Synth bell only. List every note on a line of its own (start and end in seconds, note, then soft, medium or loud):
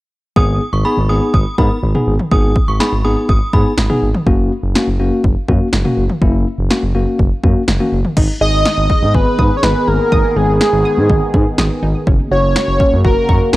0.36 0.55 D#6 loud
0.73 0.82 C#6 medium
0.85 1.03 B5 medium
1.09 1.18 D#6 medium
1.34 1.52 D#6 medium
1.58 1.67 B5 medium
2.31 2.50 D#6 medium
2.68 2.77 C#6 medium
2.80 2.98 B5 medium
3.05 3.14 D#6 medium
3.29 3.47 D#6 medium
3.53 3.62 B5 medium